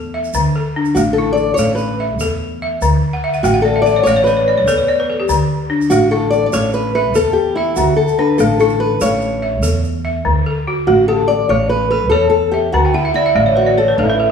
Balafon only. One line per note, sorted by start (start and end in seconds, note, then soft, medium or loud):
0.00 0.14 A4 medium
0.14 0.55 E5 medium
0.35 0.76 D3 medium
0.56 1.17 A4 medium
0.76 1.38 D4 medium
0.97 1.38 A3 medium
1.18 1.79 E4 medium
1.59 2.00 A3 medium
1.59 2.20 A4 medium
2.00 2.61 E5 medium
2.21 2.61 A4 medium
2.62 3.03 E5 medium
2.82 3.23 D3 medium
3.13 3.32 F#5 medium
3.24 3.42 E5 medium
3.34 3.53 F#5 medium
3.44 3.85 A3 medium
3.44 3.63 G5 medium
3.54 3.73 F#5 medium
3.65 3.84 D5 medium
3.76 3.94 E5 medium
3.86 4.05 F#5 medium
3.96 4.15 C#5 medium
4.07 4.47 A3 medium
4.07 4.26 D5 medium
4.16 4.35 C#5 medium
4.27 4.46 B4 medium
4.37 4.56 C#5 medium
4.48 4.66 D5 medium
4.58 4.76 C#5 medium
4.68 5.08 A4 medium
4.68 4.86 B4 medium
4.78 4.97 C#5 medium
4.88 5.07 D5 medium
5.00 5.18 B4 medium
5.10 5.28 A4 medium
5.20 5.38 G4 medium
5.29 5.70 D3 medium
5.70 6.32 D4 medium
5.92 6.33 A3 medium
6.12 6.74 E4 medium
6.54 6.94 A3 medium
6.54 7.14 A4 medium
6.95 7.56 E5 medium
7.15 7.56 A4 medium
7.57 7.98 E5 medium
7.78 8.19 D3 medium
8.19 8.81 D4 medium
8.40 8.81 A3 medium
8.61 9.22 E4 medium
9.01 9.43 A3 medium
9.01 9.61 A4 medium
9.42 10.03 E5 medium
9.63 10.04 A4 medium
10.05 10.46 E5 medium
10.25 10.66 D3 medium
10.46 11.08 A4 medium
10.68 11.29 F#4 medium
10.88 11.29 A3 medium
11.09 11.70 G4 medium
11.50 11.91 A3 medium
11.92 12.11 A4 medium
12.12 12.53 A4 medium
12.12 12.74 C#5 medium
12.54 12.95 E5 medium
12.74 13.15 D3 medium
12.74 12.93 A5 medium
12.85 13.04 G5 medium
12.95 13.14 F#5 medium
13.05 13.24 E5 medium
13.16 13.35 D5 medium
13.26 13.45 E5 medium
13.36 13.77 A3 medium
13.36 13.55 D5 medium
13.46 13.65 C#5 medium
13.56 13.75 B4 medium
13.66 13.86 D5 medium
13.78 13.97 C#5 medium
13.88 14.07 B4 medium
13.99 14.31 A3 medium
13.99 14.18 A4 medium
14.10 14.28 B4 medium
14.20 14.31 A4 medium